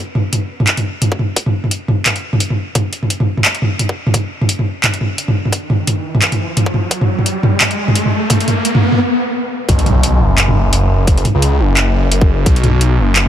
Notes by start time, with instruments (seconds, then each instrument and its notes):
0.15 mid tom
0.33 closed hi-hat, mid tom
0.60 mid tom
0.67 clap, closed hi-hat
0.77 closed hi-hat, mid tom
1.02 closed hi-hat, mid tom
1.12 kick
1.19 mid tom
1.36 kick, closed hi-hat
1.46 mid tom
1.64 mid tom
1.71 closed hi-hat
1.88 mid tom
2.06 clap, closed hi-hat, mid tom
2.16 closed hi-hat
2.33 mid tom
2.40 closed hi-hat
2.50 mid tom
2.75 kick, closed hi-hat, mid tom
2.93 closed hi-hat
3.03 mid tom
3.10 closed hi-hat
3.20 mid tom
3.37 mid tom
3.45 clap, closed hi-hat
3.55 closed hi-hat
3.62 mid tom
3.79 closed hi-hat, mid tom
3.89 kick
4.07 mid tom
4.14 kick, closed hi-hat, mid tom, riser
4.41 mid tom
4.49 closed hi-hat
4.59 mid tom
4.84 clap, closed hi-hat, mid tom
4.94 closed hi-hat
5.01 mid tom
5.18 closed hi-hat
5.28 mid tom
5.45 mid tom
5.52 kick, closed hi-hat
5.70 mid tom
5.87 closed hi-hat, mid tom
6.15 mid tom
6.22 clap, closed hi-hat
6.32 closed hi-hat, mid tom
6.57 closed hi-hat, mid tom
6.66 kick
6.74 mid tom
6.91 kick, closed hi-hat
7.01 mid tom
7.19 mid tom
7.26 closed hi-hat
7.43 mid tom
7.61 clap, closed hi-hat, mid tom
7.71 closed hi-hat
7.88 mid tom
7.95 closed hi-hat
8.05 mid tom
8.30 kick, closed hi-hat, mid tom
8.40 closed hi-hat
8.48 closed hi-hat, mid tom
8.65 closed hi-hat
8.75 mid tom
8.92 mid tom
9.68 detuned saw bass B1, kick, closed hi-hat, impact
9.79 closed hi-hat
9.86 closed hi-hat, mid tom
10.03 closed hi-hat
10.21 detuned saw bass F#1
10.38 clap, closed hi-hat
10.48 mid tom
10.73 closed hi-hat
11.07 kick, closed hi-hat
11.18 closed hi-hat
11.25 closed hi-hat, mid tom
11.35 detuned saw bass C#2
11.42 closed hi-hat
11.60 detuned saw bass F#1
11.77 clap, closed hi-hat
12.12 closed hi-hat
12.21 kick
12.46 detuned saw bass B1, kick, closed hi-hat
12.56 closed hi-hat
12.64 closed hi-hat, mid tom
12.81 closed hi-hat
12.98 detuned saw bass F#1
13.16 clap, closed hi-hat